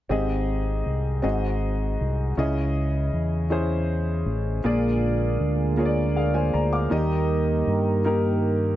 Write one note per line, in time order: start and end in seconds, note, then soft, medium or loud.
0.09 0.82 G#1 medium
0.09 1.20 G#2 soft
0.09 1.18 C4 medium
0.09 1.18 G4 medium
0.09 1.18 G#4 medium
0.09 1.18 D#5 medium
0.86 1.21 C2 medium
1.22 1.96 G#1 medium
1.22 2.33 G#2 soft
1.22 2.31 C4 medium
1.22 2.31 F#4 soft
1.22 2.31 G#4 soft
1.22 2.32 D#5 medium
2.01 2.35 C2 medium
2.37 3.09 C#2 medium
2.37 3.47 C#3 medium
2.37 3.45 C#4 medium
2.37 3.45 E4 medium
2.37 3.46 G#4 medium
2.37 3.46 D#5 medium
3.14 4.23 E2 medium
3.50 4.58 C#4 medium
3.50 4.58 E4 soft
3.50 4.59 G#4 medium
3.50 4.59 C5 medium
4.26 4.61 A1 medium
4.64 5.37 A#1 medium
4.64 5.74 A#2 soft
4.64 6.90 D3 soft
4.64 6.90 G#3 soft
4.64 5.72 A#3 medium
4.64 8.76 A#3 soft
4.64 5.72 F4 medium
4.64 6.90 F4 soft
4.64 5.73 G#4 medium
4.64 6.90 G#4 medium
4.64 5.73 D5 medium
5.40 6.50 D2 medium
5.77 6.85 A#3 medium
5.77 6.86 F4 medium
5.77 6.16 G#4 medium
5.77 5.85 C#5 soft
5.85 6.20 D5 medium
6.16 6.35 G#4 soft
6.16 6.34 F5 soft
6.34 6.53 C5 soft
6.34 6.53 G#5 medium
6.53 6.89 D2 medium
6.53 6.72 D5 soft
6.53 6.72 A#5 medium
6.73 7.09 F5 soft
6.73 7.09 D6 soft
6.90 7.64 D#2 medium
6.90 8.01 D#3 soft
6.90 8.76 D#3 soft
6.90 8.76 G3 soft
6.90 7.98 A#3 medium
6.90 7.99 D#4 medium
6.90 7.99 G4 medium
6.90 8.76 G4 soft
6.90 8.76 A#4 medium
6.90 8.00 D#5 medium
7.67 8.76 G2 medium
8.05 8.76 A#3 medium
8.05 8.76 D#4 medium
8.05 8.76 G4 medium
8.05 8.76 A#4 medium